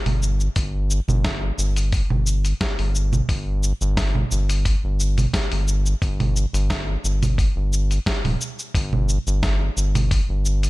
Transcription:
0.06 G1, open hi-hat, low conga
0.23 cabasa
0.40 cabasa
0.56 G1, kick, open hi-hat, cabasa
0.91 cabasa
1.08 G1, low conga, cabasa
1.24 kick, snare, open hi-hat, cabasa
1.58 G1, cabasa
1.76 open hi-hat, cabasa
1.92 kick, open hi-hat, cabasa
2.10 G1, low conga
2.27 cabasa
2.45 open hi-hat, cabasa
2.61 kick, snare, open hi-hat, cabasa
2.79 G1, open hi-hat
2.95 cabasa
3.13 low conga, cabasa
3.29 G1, kick, open hi-hat, cabasa
3.63 cabasa
3.81 G1, cabasa
3.97 kick, snare, open hi-hat, cabasa
4.15 low conga
4.32 G1, cabasa
4.50 open hi-hat, cabasa
4.65 kick, open hi-hat, cabasa
4.84 G1
5.00 cabasa
5.18 open hi-hat, low conga, cabasa
5.34 kick, snare, open hi-hat, cabasa
5.52 G1, open hi-hat
5.68 cabasa
5.86 cabasa
6.02 G1, kick, open hi-hat, cabasa
6.20 open hi-hat, low conga
6.36 cabasa
6.54 G1, open hi-hat, cabasa
6.70 kick, snare, open hi-hat, cabasa
7.04 G1, cabasa
7.23 open hi-hat, low conga, cabasa
7.38 kick, open hi-hat, cabasa
7.56 G1
7.73 cabasa
7.91 open hi-hat, cabasa
8.06 kick, snare, open hi-hat, cabasa
8.24 D1, open hi-hat, low conga
8.41 cabasa
8.59 cabasa
8.74 G1, kick, open hi-hat, cabasa
8.93 low conga
9.09 cabasa
9.27 G1, cabasa
9.43 kick, snare, open hi-hat, cabasa
9.77 G1, cabasa
9.95 open hi-hat, low conga, cabasa
10.11 kick, open hi-hat, cabasa
10.29 G1
10.46 cabasa
10.63 open hi-hat, cabasa

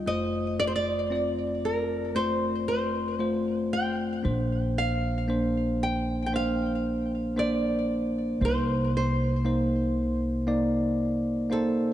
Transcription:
0.06 F1 F2 A3 F4 C5 D#5
0.60 D5
0.67 C5
0.76 D5
1.10 C4 F4 D5
1.65 A#4
2.15 A3 F4 C5
2.68 C5
3.19 A3 F4 C5
3.73 G5
4.23 A#1 A#2 A#3 D4 C5
4.43 F5
4.78 F5
5.28 A#3 D4 C5
5.83 G5
6.26 G5
6.32 A#3 D4 C5 F5
7.36 A#3 D4 C5 D5
8.41 C2 C3 A#3 D#4 C5
8.45 C5
8.97 C5
9.45 A#3 D#4 C5
10.47 A#3 D#4 D5
11.50 A#3 D#4 A4 C5

